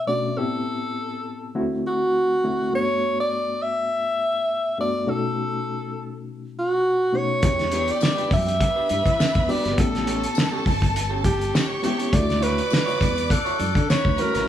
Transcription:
Already playing: B2 A3 B3 D4 E4
0.07 B2 A3 C#4 D4 F#4 D5
0.37 A2 B3 C4 E4 G4 A4
1.55 D3 A3 C4 E4 F#4
1.87 F#4
2.44 D3 A3 C4 E4 F#4
2.73 G2 A3 B3 D4 F#4 C#5
3.20 D5
3.63 E5
4.78 G2 A3 B3 D4 F#4 D5
5.07 B2 A3 C#4 D#4 F#4 A4
6.59 F#4
7.12 B2 A3 C#4 D#4 F#4
7.17 C#5
7.42 E2 B3 D4 E4 G4 G5, kick, closed hi-hat
7.59 snare, closed hi-hat, high conga
7.72 D4 G4 B4, closed hi-hat, muted conga
7.88 D5, closed hi-hat
8.01 D6, muted clean electric guitar stroke, snare, tambourine, muted conga, high conga
8.17 D4 G4 B4, closed hi-hat
8.31 F#2 E5, muted clean electric guitar stroke, kick, open hi-hat, muted conga, high conga, low conga
8.47 muted clean electric guitar stroke, closed hi-hat
8.60 B4 B5, muted clean electric guitar stroke, kick, closed hi-hat, muted conga
8.76 D4 G4 B4
8.89 G2, muted clean electric guitar stroke, closed hi-hat, muted conga, high conga
9.05 E3, muted clean electric guitar stroke, kick, closed hi-hat
9.19 muted clean electric guitar stroke, muted fingered electric bass stroke, snare, tambourine, muted conga
9.35 E2, muted clean electric guitar stroke, kick, closed hi-hat
9.47 B3 D4 F#4 G4 B4 D5, open hi-hat, high conga, low conga
9.63 G1 D4 G4 B4, snare, closed hi-hat
9.76 A1 B3 C#4 E4 G4 A4 A5, kick, closed hi-hat
9.95 snare, closed hi-hat, high conga
10.06 C#4 G4 A4, closed hi-hat, muted conga
10.23 closed hi-hat
10.35 muted clean electric guitar stroke, snare, tambourine, high conga
10.51 C#4 G4 A4
10.65 G1, muted clean electric guitar stroke, kick, open hi-hat, high conga, low conga
10.81 muted clean electric guitar stroke, kick, closed hi-hat
10.94 muted clean electric guitar stroke, closed hi-hat, muted conga
11.10 C#4 G4 A4
11.23 G4, muted clean electric guitar stroke, kick, closed hi-hat, muted conga, high conga
11.39 muted clean electric guitar stroke, closed hi-hat
11.53 C#5 C#6, muted clean electric guitar stroke, snare, tambourine
11.69 muted clean electric guitar stroke
11.82 B3 C#4 E4 G4 A4, closed hi-hat, muted conga, high conga, low conga
11.98 C#4 G4 A4, closed hi-hat
12.12 D2 C#3 A3 E4 F#4 D5 D6, kick, closed hi-hat
12.29 snare, closed hi-hat, high conga
12.41 E4 F#4 B4 C#5, closed hi-hat
12.58 closed hi-hat
12.70 muted clean electric guitar stroke, snare, tambourine, muted conga, high conga
12.86 E4 F#4 C#5, closed hi-hat
13.00 E2, muted clean electric guitar stroke, kick, closed hi-hat, muted conga, high conga, low conga
13.16 muted clean electric guitar stroke, closed hi-hat
13.30 A4 F#6, muted clean electric guitar stroke, kick, closed hi-hat
13.45 E4 F#4 C#5, closed hi-hat
13.59 F#2, muted clean electric guitar stroke, closed hi-hat, muted conga, high conga
13.75 D3, muted clean electric guitar stroke, kick, closed hi-hat
13.88 B4 C#5 B5, muted clean electric guitar stroke, muted fingered electric bass stroke, snare, tambourine
14.05 D2, muted clean electric guitar stroke, kick
14.18 A3 C#4 E4 F#4 A#4 C#5, closed hi-hat, high conga, low conga
14.34 A1 E4 F#4 C#5, snare, closed hi-hat

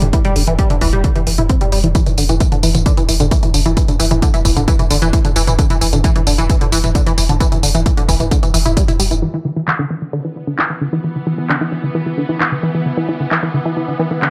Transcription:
0.02 E1 D3, closed hi-hat, mid tom
0.13 E3, kick, closed hi-hat
0.25 G3, closed hi-hat, mid tom
0.36 E1 D3, open hi-hat
0.47 E1 E3, closed hi-hat, mid tom
0.59 G3, kick, closed hi-hat
0.70 D3, closed hi-hat, mid tom
0.81 E1 E3, kick, open hi-hat
0.93 E1 G3, closed hi-hat, mid tom
1.04 D3, kick, closed hi-hat
1.16 E3, closed hi-hat, mid tom
1.27 E1 E3, open hi-hat
1.38 E1 E4, closed hi-hat, mid tom
1.50 C4, kick, closed hi-hat
1.61 G3, closed hi-hat, mid tom
1.72 E1 G3, open hi-hat
1.84 E1 E3, closed hi-hat, mid tom
1.95 E3, kick, closed hi-hat, tambourine
2.06 E3, closed hi-hat, mid tom, tambourine
2.18 E1 D3, open hi-hat, tambourine
2.29 E1 E3, closed hi-hat, mid tom, tambourine
2.40 E3, kick, closed hi-hat, tambourine
2.52 D3, closed hi-hat, mid tom, tambourine
2.63 E1 E3, open hi-hat, tambourine
2.75 E1 E3, closed hi-hat, mid tom, tambourine
2.86 D3, kick, closed hi-hat, tambourine
2.97 E3, closed hi-hat, mid tom, tambourine
3.09 E1 E3, open hi-hat, tambourine
3.20 E1 D3, closed hi-hat, mid tom, tambourine
3.31 E3, kick, closed hi-hat, tambourine
3.43 E3, closed hi-hat, mid tom, tambourine
3.54 E1 D3, open hi-hat, tambourine
3.66 E1 E3, closed hi-hat, mid tom, tambourine
3.77 E3, kick, closed hi-hat, tambourine
3.88 D3, closed hi-hat, mid tom, tambourine
4.00 E1 E3, open hi-hat, tambourine
4.11 E1 E3, closed hi-hat, mid tom, tambourine
4.22 D3, kick, closed hi-hat, tambourine
4.34 E3, closed hi-hat, mid tom, tambourine
4.45 E1 E3, kick, open hi-hat, tambourine
4.56 E1 D3, closed hi-hat, mid tom, tambourine
4.68 E3, kick, closed hi-hat, tambourine
4.79 E3, closed hi-hat, mid tom, tambourine
4.90 E1 D3, open hi-hat, tambourine
5.02 E1 E3, closed hi-hat, mid tom, tambourine
5.13 E3, kick, closed hi-hat, tambourine
5.25 D3, closed hi-hat, mid tom, tambourine
5.36 E1 E3, open hi-hat, tambourine
5.47 E1 E3, closed hi-hat, mid tom, tambourine
5.59 D3, kick, closed hi-hat, tambourine
5.70 E3, closed hi-hat, mid tom, tambourine
5.81 E1 E3, open hi-hat, tambourine
5.93 E1 D3, closed hi-hat, mid tom, tambourine
6.04 E3, kick, closed hi-hat, tambourine
6.16 E3, closed hi-hat, mid tom, tambourine
6.27 E1 D3, open hi-hat, tambourine
6.38 E1 E3, closed hi-hat, mid tom, tambourine
6.50 E3, kick, closed hi-hat, tambourine
6.61 D3, closed hi-hat, mid tom, tambourine
6.72 E1 E3, open hi-hat, tambourine
6.84 E1 E3, closed hi-hat, mid tom, tambourine
6.95 D3, kick, closed hi-hat, tambourine
7.07 E3, closed hi-hat, mid tom, tambourine
7.18 E1 E3, open hi-hat, tambourine
7.29 E1 D3, closed hi-hat, mid tom, tambourine
7.40 E3, kick, closed hi-hat, tambourine
7.52 E3, closed hi-hat, mid tom, tambourine
7.63 E1 D3, open hi-hat, tambourine
7.75 E1 E3, closed hi-hat, mid tom, tambourine
7.86 E3, kick, closed hi-hat, tambourine
7.97 D3, closed hi-hat, mid tom, tambourine
8.08 E1 E3, kick, open hi-hat, tambourine
8.20 E1 E3, closed hi-hat, mid tom, tambourine
8.31 D3, kick, closed hi-hat, tambourine
8.43 E3, closed hi-hat, mid tom, tambourine
8.54 E1 E3, open hi-hat, tambourine
8.65 E1 E4, closed hi-hat, mid tom, tambourine
8.77 G3, kick, closed hi-hat, tambourine
8.88 E4, closed hi-hat, mid tom, tambourine
8.99 E1 G3, open hi-hat, tambourine
9.11 E1 E3, closed hi-hat, mid tom, tambourine
9.22 E3 B3
9.34 E3
9.45 D3
9.56 E3
9.68 E3, clap
9.79 D3
9.90 E3
10.02 E3
10.13 D3
10.25 E3
10.36 E3
10.47 D3
10.59 E3, clap
10.70 E3
10.81 D3
10.93 E3
11.04 E3
11.16 D3
11.27 E3
11.38 E3
11.50 D3, clap
11.61 E3
11.72 E3
11.84 D3
11.95 E3
12.06 E3
12.18 D3
12.29 E3
12.40 E3, clap
12.52 D3
12.63 E3
12.75 E3
12.86 D3
12.97 E3
13.09 E3
13.20 D3
13.31 E3, clap
13.43 E3
13.54 D3
13.66 E3
13.77 E3
13.88 D3
13.99 E3
14.11 E3
14.22 D3, clap

